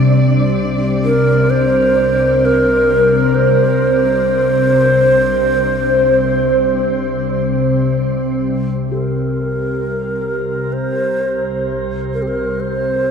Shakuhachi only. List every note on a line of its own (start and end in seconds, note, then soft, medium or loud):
1.04 1.52 A#4 loud
1.50 2.47 C5 loud
2.45 3.36 A#4 loud
3.35 7.97 C5 loud
8.89 10.74 A#4 medium
10.73 11.66 C5 loud
12.14 12.24 A#4 medium
12.22 12.29 G4 medium
12.27 12.62 A#4 medium
12.60 13.11 C5 medium